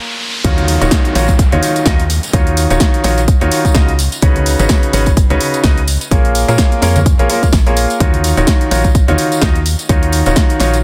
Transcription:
Already playing: A#3 F4 G#4 A#4 C#5, riser
0.44 D#2 D#3 D#4 F4 F#4 C#5, kick, closed hi-hat, tambourine, downlifter, high conga
0.58 closed hi-hat, high conga
0.68 open hi-hat, tambourine
0.81 D#1 D#3 D#4 F4 F#4 C#5, closed hi-hat, tambourine
0.91 kick, snare, closed hi-hat, tambourine
1.05 closed hi-hat
1.15 A#1 D#3 D#4 F4 F#4 C#5, open hi-hat, tambourine
1.28 kick, closed hi-hat, tambourine
1.39 kick, closed hi-hat, tambourine
1.52 D#2 D#3 D#4 F4 F#4 C#5, closed hi-hat, high conga
1.63 open hi-hat, tambourine
1.76 closed hi-hat, tambourine
1.86 D#2 D#3 D#4 F4 F#4 D#5, kick, snare, closed hi-hat, tambourine
2.00 closed hi-hat
2.10 open hi-hat, tambourine
2.23 closed hi-hat, tambourine
2.33 D#2 D#3 D#4 F4 F#4 C#5, kick, closed hi-hat
2.47 closed hi-hat
2.57 open hi-hat, tambourine
2.70 D#1 D#3 D#4 F4 F#4 C#5, closed hi-hat, tambourine
2.80 kick, snare, closed hi-hat, tambourine
2.94 closed hi-hat
3.04 A#1 D#3 D#4 F4 F#4 C#5, snare, open hi-hat, tambourine
3.18 closed hi-hat, tambourine
3.28 kick, closed hi-hat, tambourine
3.41 D#2 D#3 D#4 F4 F#4 C#5, closed hi-hat
3.51 open hi-hat, tambourine
3.65 kick, closed hi-hat, tambourine
3.75 C#2 C#3 D#4 F4 F#4 D#5, kick, snare, closed hi-hat, tambourine
3.89 closed hi-hat
3.99 open hi-hat, tambourine
4.12 closed hi-hat, tambourine
4.22 C#2 C#3 D#4 F#4 B4 C#5, kick, closed hi-hat, tambourine, high conga
4.36 closed hi-hat, high conga
4.46 open hi-hat, tambourine
4.59 G#1 C#3 D#4 F#4 B4 C#5, closed hi-hat, tambourine
4.69 kick, snare, closed hi-hat, tambourine
4.83 closed hi-hat
4.93 G#1 C#3 D#4 F#4 B4 C#5, open hi-hat, tambourine
5.06 kick, closed hi-hat, tambourine
5.17 kick, closed hi-hat, tambourine
5.30 C#2 C#3 D#4 F#4 B4 C#5, closed hi-hat, high conga
5.41 open hi-hat, tambourine
5.54 closed hi-hat, tambourine
5.64 C#2 C#3 D#4 F#4 B4 D#5, kick, snare, closed hi-hat, tambourine
5.78 closed hi-hat
5.88 open hi-hat, tambourine
6.01 closed hi-hat, tambourine
6.11 A#1 A#3 F4 G#4 A#4 C#5, kick, closed hi-hat, tambourine, high conga
6.25 closed hi-hat
6.35 open hi-hat, tambourine
6.48 A#2 A#3 F4 G#4 A#4 C#5, closed hi-hat, tambourine
6.58 kick, snare, closed hi-hat, tambourine
6.72 closed hi-hat
6.82 F2 A#3 F4 G#4 A#4 C#5, snare, open hi-hat, tambourine
6.96 closed hi-hat, tambourine, high conga
7.06 kick, closed hi-hat, tambourine
7.19 A#1 A#3 F4 G#4 A#4 C#5, closed hi-hat
7.29 A#3 F4 G#4 A#4 C#5, open hi-hat, tambourine
7.43 kick, closed hi-hat, tambourine
7.53 A#1, kick, snare, closed hi-hat, tambourine
7.66 A#3 F4 G#4 A#4 C#5, closed hi-hat
7.77 open hi-hat, tambourine
7.90 closed hi-hat, tambourine
8.00 D#2 D#3 D#4 F4 F#4 C#5, kick, closed hi-hat, tambourine, high conga
8.14 closed hi-hat, high conga
8.24 open hi-hat, tambourine
8.37 D#1 D#3 D#4 F4 F#4 C#5, closed hi-hat, tambourine
8.47 kick, snare, closed hi-hat, tambourine
8.61 closed hi-hat
8.71 A#1 D#3 D#4 F4 F#4 C#5, open hi-hat, tambourine
8.84 kick, closed hi-hat, tambourine
8.95 kick, closed hi-hat, tambourine
9.08 D#2 D#3 D#4 F4 F#4 C#5, closed hi-hat, high conga
9.18 open hi-hat, tambourine
9.32 closed hi-hat, tambourine
9.42 D#2 D#4 F4 F#4 D#5, kick, snare, closed hi-hat
9.55 closed hi-hat
9.66 open hi-hat, tambourine
9.79 closed hi-hat, tambourine
9.89 D#2 D#3 D#4 F4 F#4 C#5, kick, closed hi-hat, tambourine
10.03 closed hi-hat
10.12 open hi-hat, tambourine
10.26 D#1 D#3 D#4 F4 F#4 C#5, closed hi-hat, tambourine
10.36 kick, snare, closed hi-hat, tambourine
10.50 closed hi-hat
10.60 A#1 D#3 D#4 F4 F#4 C#5, snare, open hi-hat, tambourine
10.74 closed hi-hat, tambourine

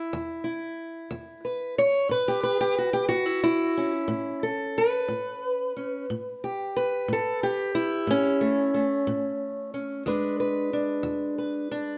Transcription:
Already playing: E4
0.13 E2
0.44 E4
1.11 E2
1.45 B4
1.78 C#5
2.09 A2 B4
2.28 G4
2.43 B4
2.61 G4
2.78 F#4
2.93 G4
3.09 A2 F#4
3.26 E4
3.43 E4
3.77 C#4
4.08 A2
4.43 A4
4.78 B4
5.08 A2
5.77 C#4
6.10 A2
6.44 G4
6.77 B4
7.08 A2
7.13 A4
7.43 G4
7.75 E4
8.07 A2 C#4
8.41 A3
8.74 A3
9.07 A2
9.74 C#4
10.06 E2 G#3 D4 B4
10.40 B4
10.73 D4
11.03 E2
11.38 B4
11.71 D4

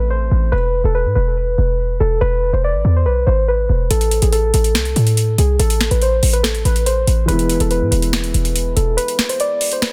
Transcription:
Already playing: A1
0.10 C5
0.31 A1
0.52 E1 B4
0.84 E1 A4
0.95 B4
1.05 G#2
1.15 E1 B4
1.58 E1
2.00 E1 A4
2.21 E1 B4
2.53 E1 C5
2.64 D5
2.74 G#1
2.85 E2
2.96 C5
3.06 B1 B4
3.27 G#1 C5
3.48 B4
3.69 E1
3.90 A1 A4, closed hi-hat
4.01 closed hi-hat
4.11 closed hi-hat
4.22 A1 G#4, closed hi-hat
4.33 A4, closed hi-hat
4.54 A1 A4, closed hi-hat
4.64 closed hi-hat
4.75 C2, finger snap, snare, closed hi-hat
4.85 closed hi-hat
4.96 A2, closed hi-hat
5.07 closed hi-hat
5.17 closed hi-hat
5.38 C2 G#4, closed hi-hat
5.59 A1 A4, closed hi-hat
5.70 closed hi-hat
5.81 finger snap, snare, closed hi-hat
5.91 A1 B4, closed hi-hat
6.02 C5, closed hi-hat
6.23 A1, open hi-hat
6.33 B4, closed hi-hat
6.43 A4, finger snap, snare, closed hi-hat
6.55 closed hi-hat
6.65 A1 B4, closed hi-hat
6.76 closed hi-hat
6.86 C5, closed hi-hat
7.07 A1, closed hi-hat
7.26 E1 E3 G#3 B3 B4, closed hi-hat
7.32 E4
7.39 closed hi-hat
7.50 closed hi-hat
7.60 E1 A4, closed hi-hat
7.71 B4, closed hi-hat
7.81 G#2
7.91 E1 B4, closed hi-hat
8.02 closed hi-hat
8.13 finger snap, snare, closed hi-hat
8.24 closed hi-hat
8.34 E1, closed hi-hat
8.45 closed hi-hat
8.56 closed hi-hat
8.76 E1 A4, closed hi-hat
8.97 B4, closed hi-hat
9.08 closed hi-hat
9.19 finger snap, snare, closed hi-hat
9.29 C5, closed hi-hat
9.40 D5, closed hi-hat
9.61 open hi-hat
9.72 C5, closed hi-hat
9.82 B4, finger snap, snare, closed hi-hat

